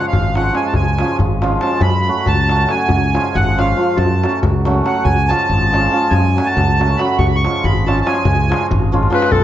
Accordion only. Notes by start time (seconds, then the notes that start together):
0.08 F5
0.36 F#5
0.55 G#5
0.67 A5
0.75 G#5
1.61 A5
1.82 B5
2.27 A5
2.70 G#5
3.35 F#5
3.59 F5
3.97 A5
4.86 F#5
5.04 G#5
5.28 A5
6.10 G#5
6.46 A5
6.97 B5
7.18 C#6
7.28 B5
7.36 C#6
7.64 B5
7.87 A5
8.01 A5
8.06 G#5
9.12 B4
9.31 A4